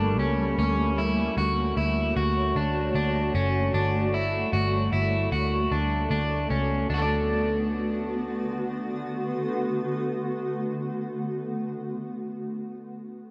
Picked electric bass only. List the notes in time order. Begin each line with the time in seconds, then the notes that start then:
Already playing: G1
0.19 C#2
0.58 D2
1.37 D2
1.77 D2
2.16 D2
2.56 D2
2.95 D2
3.34 F#1
3.74 G1
4.53 G1
4.92 G1
5.32 D2
5.71 D2
6.11 D2
6.50 C#2
6.90 D2